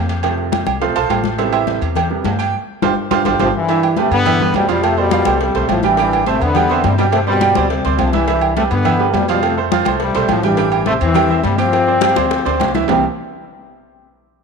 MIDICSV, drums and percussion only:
0, 0, Header, 1, 2, 480
1, 0, Start_track
1, 0, Key_signature, 0, "major"
1, 0, Tempo, 287494
1, 402, Time_signature, 4, 2, 24, 8
1, 24104, End_track
2, 0, Start_track
2, 0, Title_t, "Drums"
2, 155, Note_on_c, 9, 68, 65
2, 156, Note_on_c, 9, 56, 71
2, 322, Note_off_c, 9, 68, 0
2, 323, Note_off_c, 9, 56, 0
2, 384, Note_on_c, 9, 68, 109
2, 395, Note_on_c, 9, 56, 110
2, 401, Note_on_c, 9, 63, 36
2, 551, Note_off_c, 9, 68, 0
2, 562, Note_off_c, 9, 56, 0
2, 567, Note_off_c, 9, 63, 0
2, 634, Note_on_c, 9, 63, 39
2, 801, Note_off_c, 9, 63, 0
2, 872, Note_on_c, 9, 66, 57
2, 872, Note_on_c, 9, 68, 92
2, 878, Note_on_c, 9, 63, 99
2, 881, Note_on_c, 9, 56, 74
2, 1038, Note_off_c, 9, 66, 0
2, 1038, Note_off_c, 9, 68, 0
2, 1045, Note_off_c, 9, 63, 0
2, 1048, Note_off_c, 9, 56, 0
2, 1111, Note_on_c, 9, 63, 81
2, 1113, Note_on_c, 9, 68, 107
2, 1278, Note_off_c, 9, 63, 0
2, 1280, Note_off_c, 9, 68, 0
2, 1357, Note_on_c, 9, 63, 34
2, 1361, Note_on_c, 9, 56, 101
2, 1524, Note_off_c, 9, 63, 0
2, 1528, Note_off_c, 9, 56, 0
2, 1597, Note_on_c, 9, 63, 35
2, 1599, Note_on_c, 9, 56, 84
2, 1764, Note_off_c, 9, 63, 0
2, 1766, Note_off_c, 9, 56, 0
2, 1835, Note_on_c, 9, 63, 68
2, 1841, Note_on_c, 9, 56, 68
2, 1843, Note_on_c, 9, 66, 78
2, 1843, Note_on_c, 9, 68, 108
2, 2002, Note_off_c, 9, 63, 0
2, 2008, Note_off_c, 9, 56, 0
2, 2010, Note_off_c, 9, 66, 0
2, 2010, Note_off_c, 9, 68, 0
2, 2065, Note_on_c, 9, 63, 88
2, 2088, Note_on_c, 9, 56, 75
2, 2232, Note_off_c, 9, 63, 0
2, 2255, Note_off_c, 9, 56, 0
2, 2310, Note_on_c, 9, 63, 35
2, 2312, Note_on_c, 9, 68, 63
2, 2319, Note_on_c, 9, 56, 96
2, 2477, Note_off_c, 9, 63, 0
2, 2479, Note_off_c, 9, 68, 0
2, 2486, Note_off_c, 9, 56, 0
2, 2547, Note_on_c, 9, 68, 104
2, 2557, Note_on_c, 9, 63, 40
2, 2714, Note_off_c, 9, 68, 0
2, 2724, Note_off_c, 9, 63, 0
2, 2790, Note_on_c, 9, 63, 59
2, 2791, Note_on_c, 9, 66, 68
2, 2802, Note_on_c, 9, 56, 73
2, 2957, Note_off_c, 9, 63, 0
2, 2958, Note_off_c, 9, 66, 0
2, 2969, Note_off_c, 9, 56, 0
2, 3028, Note_on_c, 9, 63, 35
2, 3040, Note_on_c, 9, 68, 74
2, 3195, Note_off_c, 9, 63, 0
2, 3207, Note_off_c, 9, 68, 0
2, 3264, Note_on_c, 9, 63, 40
2, 3264, Note_on_c, 9, 64, 87
2, 3277, Note_on_c, 9, 56, 107
2, 3283, Note_on_c, 9, 68, 113
2, 3431, Note_off_c, 9, 63, 0
2, 3431, Note_off_c, 9, 64, 0
2, 3444, Note_off_c, 9, 56, 0
2, 3450, Note_off_c, 9, 68, 0
2, 3514, Note_on_c, 9, 63, 36
2, 3681, Note_off_c, 9, 63, 0
2, 3747, Note_on_c, 9, 63, 79
2, 3758, Note_on_c, 9, 56, 71
2, 3762, Note_on_c, 9, 66, 86
2, 3762, Note_on_c, 9, 68, 71
2, 3914, Note_off_c, 9, 63, 0
2, 3925, Note_off_c, 9, 56, 0
2, 3929, Note_off_c, 9, 66, 0
2, 3929, Note_off_c, 9, 68, 0
2, 4000, Note_on_c, 9, 56, 70
2, 4009, Note_on_c, 9, 68, 75
2, 4167, Note_off_c, 9, 56, 0
2, 4176, Note_off_c, 9, 68, 0
2, 4713, Note_on_c, 9, 63, 108
2, 4719, Note_on_c, 9, 56, 96
2, 4724, Note_on_c, 9, 65, 105
2, 4880, Note_off_c, 9, 63, 0
2, 4886, Note_off_c, 9, 56, 0
2, 4891, Note_off_c, 9, 65, 0
2, 5193, Note_on_c, 9, 63, 104
2, 5195, Note_on_c, 9, 65, 106
2, 5197, Note_on_c, 9, 56, 93
2, 5360, Note_off_c, 9, 63, 0
2, 5362, Note_off_c, 9, 65, 0
2, 5364, Note_off_c, 9, 56, 0
2, 5427, Note_on_c, 9, 63, 104
2, 5442, Note_on_c, 9, 56, 109
2, 5442, Note_on_c, 9, 65, 93
2, 5594, Note_off_c, 9, 63, 0
2, 5609, Note_off_c, 9, 56, 0
2, 5609, Note_off_c, 9, 65, 0
2, 5669, Note_on_c, 9, 63, 93
2, 5678, Note_on_c, 9, 65, 99
2, 5681, Note_on_c, 9, 56, 97
2, 5836, Note_off_c, 9, 63, 0
2, 5845, Note_off_c, 9, 65, 0
2, 5848, Note_off_c, 9, 56, 0
2, 6152, Note_on_c, 9, 56, 106
2, 6156, Note_on_c, 9, 63, 38
2, 6159, Note_on_c, 9, 68, 70
2, 6319, Note_off_c, 9, 56, 0
2, 6323, Note_off_c, 9, 63, 0
2, 6326, Note_off_c, 9, 68, 0
2, 6392, Note_on_c, 9, 63, 39
2, 6399, Note_on_c, 9, 68, 113
2, 6559, Note_off_c, 9, 63, 0
2, 6566, Note_off_c, 9, 68, 0
2, 6619, Note_on_c, 9, 63, 70
2, 6631, Note_on_c, 9, 56, 68
2, 6633, Note_on_c, 9, 66, 60
2, 6786, Note_off_c, 9, 63, 0
2, 6798, Note_off_c, 9, 56, 0
2, 6800, Note_off_c, 9, 66, 0
2, 6871, Note_on_c, 9, 63, 35
2, 6872, Note_on_c, 9, 68, 77
2, 7038, Note_off_c, 9, 63, 0
2, 7039, Note_off_c, 9, 68, 0
2, 7104, Note_on_c, 9, 56, 106
2, 7115, Note_on_c, 9, 63, 37
2, 7115, Note_on_c, 9, 64, 95
2, 7116, Note_on_c, 9, 68, 121
2, 7271, Note_off_c, 9, 56, 0
2, 7282, Note_off_c, 9, 63, 0
2, 7282, Note_off_c, 9, 64, 0
2, 7283, Note_off_c, 9, 68, 0
2, 7348, Note_on_c, 9, 63, 36
2, 7348, Note_on_c, 9, 64, 78
2, 7515, Note_off_c, 9, 63, 0
2, 7515, Note_off_c, 9, 64, 0
2, 7577, Note_on_c, 9, 63, 73
2, 7585, Note_on_c, 9, 56, 70
2, 7607, Note_on_c, 9, 66, 92
2, 7607, Note_on_c, 9, 68, 83
2, 7744, Note_off_c, 9, 63, 0
2, 7752, Note_off_c, 9, 56, 0
2, 7774, Note_off_c, 9, 66, 0
2, 7774, Note_off_c, 9, 68, 0
2, 7823, Note_on_c, 9, 63, 71
2, 7827, Note_on_c, 9, 56, 67
2, 7839, Note_on_c, 9, 68, 72
2, 7990, Note_off_c, 9, 63, 0
2, 7994, Note_off_c, 9, 56, 0
2, 8006, Note_off_c, 9, 68, 0
2, 8063, Note_on_c, 9, 63, 35
2, 8072, Note_on_c, 9, 56, 112
2, 8075, Note_on_c, 9, 68, 113
2, 8230, Note_off_c, 9, 63, 0
2, 8238, Note_off_c, 9, 56, 0
2, 8242, Note_off_c, 9, 68, 0
2, 8295, Note_on_c, 9, 63, 38
2, 8462, Note_off_c, 9, 63, 0
2, 8536, Note_on_c, 9, 63, 111
2, 8545, Note_on_c, 9, 56, 75
2, 8548, Note_on_c, 9, 66, 69
2, 8548, Note_on_c, 9, 68, 86
2, 8703, Note_off_c, 9, 63, 0
2, 8712, Note_off_c, 9, 56, 0
2, 8715, Note_off_c, 9, 66, 0
2, 8715, Note_off_c, 9, 68, 0
2, 8770, Note_on_c, 9, 63, 96
2, 8784, Note_on_c, 9, 68, 120
2, 8937, Note_off_c, 9, 63, 0
2, 8951, Note_off_c, 9, 68, 0
2, 9020, Note_on_c, 9, 63, 37
2, 9026, Note_on_c, 9, 56, 113
2, 9187, Note_off_c, 9, 63, 0
2, 9193, Note_off_c, 9, 56, 0
2, 9259, Note_on_c, 9, 63, 39
2, 9263, Note_on_c, 9, 56, 85
2, 9426, Note_off_c, 9, 63, 0
2, 9430, Note_off_c, 9, 56, 0
2, 9495, Note_on_c, 9, 66, 80
2, 9495, Note_on_c, 9, 68, 93
2, 9498, Note_on_c, 9, 63, 83
2, 9506, Note_on_c, 9, 56, 74
2, 9662, Note_off_c, 9, 66, 0
2, 9662, Note_off_c, 9, 68, 0
2, 9665, Note_off_c, 9, 63, 0
2, 9673, Note_off_c, 9, 56, 0
2, 9731, Note_on_c, 9, 63, 80
2, 9741, Note_on_c, 9, 56, 71
2, 9898, Note_off_c, 9, 63, 0
2, 9908, Note_off_c, 9, 56, 0
2, 9971, Note_on_c, 9, 56, 114
2, 9971, Note_on_c, 9, 63, 37
2, 9991, Note_on_c, 9, 68, 68
2, 10137, Note_off_c, 9, 63, 0
2, 10138, Note_off_c, 9, 56, 0
2, 10158, Note_off_c, 9, 68, 0
2, 10208, Note_on_c, 9, 63, 39
2, 10239, Note_on_c, 9, 68, 109
2, 10375, Note_off_c, 9, 63, 0
2, 10406, Note_off_c, 9, 68, 0
2, 10459, Note_on_c, 9, 56, 78
2, 10460, Note_on_c, 9, 63, 65
2, 10468, Note_on_c, 9, 66, 69
2, 10626, Note_off_c, 9, 56, 0
2, 10627, Note_off_c, 9, 63, 0
2, 10635, Note_off_c, 9, 66, 0
2, 10697, Note_on_c, 9, 63, 36
2, 10710, Note_on_c, 9, 68, 70
2, 10864, Note_off_c, 9, 63, 0
2, 10877, Note_off_c, 9, 68, 0
2, 10931, Note_on_c, 9, 56, 99
2, 10937, Note_on_c, 9, 63, 39
2, 10937, Note_on_c, 9, 64, 85
2, 10953, Note_on_c, 9, 68, 124
2, 11098, Note_off_c, 9, 56, 0
2, 11104, Note_off_c, 9, 63, 0
2, 11104, Note_off_c, 9, 64, 0
2, 11120, Note_off_c, 9, 68, 0
2, 11180, Note_on_c, 9, 63, 39
2, 11180, Note_on_c, 9, 64, 74
2, 11347, Note_off_c, 9, 63, 0
2, 11347, Note_off_c, 9, 64, 0
2, 11416, Note_on_c, 9, 56, 70
2, 11420, Note_on_c, 9, 63, 82
2, 11423, Note_on_c, 9, 66, 81
2, 11423, Note_on_c, 9, 68, 76
2, 11583, Note_off_c, 9, 56, 0
2, 11587, Note_off_c, 9, 63, 0
2, 11590, Note_off_c, 9, 66, 0
2, 11590, Note_off_c, 9, 68, 0
2, 11661, Note_on_c, 9, 56, 70
2, 11670, Note_on_c, 9, 68, 69
2, 11828, Note_off_c, 9, 56, 0
2, 11837, Note_off_c, 9, 68, 0
2, 11893, Note_on_c, 9, 68, 111
2, 11900, Note_on_c, 9, 56, 108
2, 11907, Note_on_c, 9, 63, 35
2, 12060, Note_off_c, 9, 68, 0
2, 12067, Note_off_c, 9, 56, 0
2, 12074, Note_off_c, 9, 63, 0
2, 12138, Note_on_c, 9, 63, 39
2, 12305, Note_off_c, 9, 63, 0
2, 12373, Note_on_c, 9, 63, 95
2, 12378, Note_on_c, 9, 56, 77
2, 12387, Note_on_c, 9, 66, 69
2, 12387, Note_on_c, 9, 68, 87
2, 12540, Note_off_c, 9, 63, 0
2, 12545, Note_off_c, 9, 56, 0
2, 12554, Note_off_c, 9, 66, 0
2, 12554, Note_off_c, 9, 68, 0
2, 12612, Note_on_c, 9, 63, 87
2, 12618, Note_on_c, 9, 68, 117
2, 12779, Note_off_c, 9, 63, 0
2, 12785, Note_off_c, 9, 68, 0
2, 12860, Note_on_c, 9, 56, 111
2, 12865, Note_on_c, 9, 63, 32
2, 13027, Note_off_c, 9, 56, 0
2, 13032, Note_off_c, 9, 63, 0
2, 13102, Note_on_c, 9, 56, 73
2, 13102, Note_on_c, 9, 63, 37
2, 13268, Note_off_c, 9, 56, 0
2, 13269, Note_off_c, 9, 63, 0
2, 13333, Note_on_c, 9, 63, 76
2, 13335, Note_on_c, 9, 66, 80
2, 13335, Note_on_c, 9, 68, 95
2, 13336, Note_on_c, 9, 56, 68
2, 13500, Note_off_c, 9, 63, 0
2, 13502, Note_off_c, 9, 66, 0
2, 13502, Note_off_c, 9, 68, 0
2, 13503, Note_off_c, 9, 56, 0
2, 13576, Note_on_c, 9, 63, 84
2, 13580, Note_on_c, 9, 56, 64
2, 13743, Note_off_c, 9, 63, 0
2, 13747, Note_off_c, 9, 56, 0
2, 13817, Note_on_c, 9, 68, 63
2, 13819, Note_on_c, 9, 56, 102
2, 13824, Note_on_c, 9, 63, 32
2, 13984, Note_off_c, 9, 68, 0
2, 13986, Note_off_c, 9, 56, 0
2, 13991, Note_off_c, 9, 63, 0
2, 14049, Note_on_c, 9, 68, 109
2, 14065, Note_on_c, 9, 63, 43
2, 14216, Note_off_c, 9, 68, 0
2, 14232, Note_off_c, 9, 63, 0
2, 14301, Note_on_c, 9, 66, 58
2, 14302, Note_on_c, 9, 63, 72
2, 14308, Note_on_c, 9, 56, 78
2, 14468, Note_off_c, 9, 66, 0
2, 14469, Note_off_c, 9, 63, 0
2, 14475, Note_off_c, 9, 56, 0
2, 14539, Note_on_c, 9, 68, 75
2, 14543, Note_on_c, 9, 63, 34
2, 14706, Note_off_c, 9, 68, 0
2, 14710, Note_off_c, 9, 63, 0
2, 14778, Note_on_c, 9, 56, 103
2, 14778, Note_on_c, 9, 68, 109
2, 14781, Note_on_c, 9, 63, 39
2, 14781, Note_on_c, 9, 64, 86
2, 14945, Note_off_c, 9, 56, 0
2, 14945, Note_off_c, 9, 68, 0
2, 14948, Note_off_c, 9, 63, 0
2, 14948, Note_off_c, 9, 64, 0
2, 15022, Note_on_c, 9, 63, 36
2, 15189, Note_off_c, 9, 63, 0
2, 15254, Note_on_c, 9, 66, 87
2, 15254, Note_on_c, 9, 68, 85
2, 15266, Note_on_c, 9, 56, 71
2, 15268, Note_on_c, 9, 63, 70
2, 15421, Note_off_c, 9, 66, 0
2, 15421, Note_off_c, 9, 68, 0
2, 15433, Note_off_c, 9, 56, 0
2, 15435, Note_off_c, 9, 63, 0
2, 15503, Note_on_c, 9, 68, 73
2, 15511, Note_on_c, 9, 56, 82
2, 15670, Note_off_c, 9, 68, 0
2, 15678, Note_off_c, 9, 56, 0
2, 15740, Note_on_c, 9, 68, 96
2, 15743, Note_on_c, 9, 56, 105
2, 15746, Note_on_c, 9, 63, 35
2, 15907, Note_off_c, 9, 68, 0
2, 15910, Note_off_c, 9, 56, 0
2, 15913, Note_off_c, 9, 63, 0
2, 15982, Note_on_c, 9, 63, 35
2, 16149, Note_off_c, 9, 63, 0
2, 16222, Note_on_c, 9, 56, 75
2, 16223, Note_on_c, 9, 66, 65
2, 16223, Note_on_c, 9, 68, 85
2, 16224, Note_on_c, 9, 63, 109
2, 16389, Note_off_c, 9, 56, 0
2, 16390, Note_off_c, 9, 66, 0
2, 16390, Note_off_c, 9, 68, 0
2, 16391, Note_off_c, 9, 63, 0
2, 16448, Note_on_c, 9, 68, 109
2, 16462, Note_on_c, 9, 63, 98
2, 16615, Note_off_c, 9, 68, 0
2, 16629, Note_off_c, 9, 63, 0
2, 16691, Note_on_c, 9, 56, 101
2, 16702, Note_on_c, 9, 63, 36
2, 16858, Note_off_c, 9, 56, 0
2, 16868, Note_off_c, 9, 63, 0
2, 16940, Note_on_c, 9, 56, 86
2, 16945, Note_on_c, 9, 63, 38
2, 17107, Note_off_c, 9, 56, 0
2, 17112, Note_off_c, 9, 63, 0
2, 17172, Note_on_c, 9, 66, 77
2, 17172, Note_on_c, 9, 68, 100
2, 17175, Note_on_c, 9, 56, 73
2, 17179, Note_on_c, 9, 63, 84
2, 17339, Note_off_c, 9, 66, 0
2, 17339, Note_off_c, 9, 68, 0
2, 17342, Note_off_c, 9, 56, 0
2, 17345, Note_off_c, 9, 63, 0
2, 17420, Note_on_c, 9, 63, 79
2, 17421, Note_on_c, 9, 56, 72
2, 17587, Note_off_c, 9, 63, 0
2, 17588, Note_off_c, 9, 56, 0
2, 17650, Note_on_c, 9, 56, 111
2, 17655, Note_on_c, 9, 68, 65
2, 17663, Note_on_c, 9, 63, 38
2, 17817, Note_off_c, 9, 56, 0
2, 17822, Note_off_c, 9, 68, 0
2, 17830, Note_off_c, 9, 63, 0
2, 17894, Note_on_c, 9, 68, 108
2, 17898, Note_on_c, 9, 63, 36
2, 18061, Note_off_c, 9, 68, 0
2, 18065, Note_off_c, 9, 63, 0
2, 18129, Note_on_c, 9, 56, 72
2, 18131, Note_on_c, 9, 63, 67
2, 18132, Note_on_c, 9, 66, 70
2, 18296, Note_off_c, 9, 56, 0
2, 18298, Note_off_c, 9, 63, 0
2, 18299, Note_off_c, 9, 66, 0
2, 18372, Note_on_c, 9, 63, 30
2, 18382, Note_on_c, 9, 68, 80
2, 18539, Note_off_c, 9, 63, 0
2, 18549, Note_off_c, 9, 68, 0
2, 18605, Note_on_c, 9, 63, 37
2, 18605, Note_on_c, 9, 64, 92
2, 18622, Note_on_c, 9, 56, 112
2, 18628, Note_on_c, 9, 68, 127
2, 18771, Note_off_c, 9, 63, 0
2, 18771, Note_off_c, 9, 64, 0
2, 18789, Note_off_c, 9, 56, 0
2, 18795, Note_off_c, 9, 68, 0
2, 18861, Note_on_c, 9, 63, 39
2, 19028, Note_off_c, 9, 63, 0
2, 19093, Note_on_c, 9, 63, 80
2, 19099, Note_on_c, 9, 66, 80
2, 19099, Note_on_c, 9, 68, 83
2, 19109, Note_on_c, 9, 56, 75
2, 19260, Note_off_c, 9, 63, 0
2, 19266, Note_off_c, 9, 66, 0
2, 19266, Note_off_c, 9, 68, 0
2, 19276, Note_off_c, 9, 56, 0
2, 19342, Note_on_c, 9, 68, 77
2, 19348, Note_on_c, 9, 56, 72
2, 19509, Note_off_c, 9, 68, 0
2, 19515, Note_off_c, 9, 56, 0
2, 19580, Note_on_c, 9, 63, 38
2, 19586, Note_on_c, 9, 56, 106
2, 19587, Note_on_c, 9, 68, 92
2, 19747, Note_off_c, 9, 63, 0
2, 19753, Note_off_c, 9, 56, 0
2, 19754, Note_off_c, 9, 68, 0
2, 19812, Note_on_c, 9, 63, 39
2, 19979, Note_off_c, 9, 63, 0
2, 20055, Note_on_c, 9, 63, 95
2, 20063, Note_on_c, 9, 56, 75
2, 20063, Note_on_c, 9, 60, 111
2, 20080, Note_on_c, 9, 66, 64
2, 20080, Note_on_c, 9, 68, 96
2, 20222, Note_off_c, 9, 63, 0
2, 20230, Note_off_c, 9, 56, 0
2, 20230, Note_off_c, 9, 60, 0
2, 20247, Note_off_c, 9, 66, 0
2, 20247, Note_off_c, 9, 68, 0
2, 20308, Note_on_c, 9, 63, 100
2, 20309, Note_on_c, 9, 60, 96
2, 20309, Note_on_c, 9, 68, 106
2, 20475, Note_off_c, 9, 63, 0
2, 20476, Note_off_c, 9, 60, 0
2, 20476, Note_off_c, 9, 68, 0
2, 20543, Note_on_c, 9, 63, 38
2, 20552, Note_on_c, 9, 56, 100
2, 20552, Note_on_c, 9, 60, 104
2, 20710, Note_off_c, 9, 63, 0
2, 20719, Note_off_c, 9, 56, 0
2, 20719, Note_off_c, 9, 60, 0
2, 20791, Note_on_c, 9, 63, 34
2, 20809, Note_on_c, 9, 56, 80
2, 20809, Note_on_c, 9, 61, 91
2, 20958, Note_off_c, 9, 63, 0
2, 20976, Note_off_c, 9, 56, 0
2, 20976, Note_off_c, 9, 61, 0
2, 21034, Note_on_c, 9, 66, 74
2, 21034, Note_on_c, 9, 68, 92
2, 21041, Note_on_c, 9, 63, 68
2, 21052, Note_on_c, 9, 56, 71
2, 21052, Note_on_c, 9, 61, 106
2, 21201, Note_off_c, 9, 66, 0
2, 21201, Note_off_c, 9, 68, 0
2, 21208, Note_off_c, 9, 63, 0
2, 21219, Note_off_c, 9, 56, 0
2, 21219, Note_off_c, 9, 61, 0
2, 21281, Note_on_c, 9, 63, 79
2, 21291, Note_on_c, 9, 56, 69
2, 21291, Note_on_c, 9, 61, 76
2, 21448, Note_off_c, 9, 63, 0
2, 21458, Note_off_c, 9, 56, 0
2, 21458, Note_off_c, 9, 61, 0
2, 21504, Note_on_c, 9, 66, 96
2, 21522, Note_on_c, 9, 64, 99
2, 21524, Note_on_c, 9, 61, 104
2, 21671, Note_off_c, 9, 66, 0
2, 21689, Note_off_c, 9, 64, 0
2, 21691, Note_off_c, 9, 61, 0
2, 24104, End_track
0, 0, End_of_file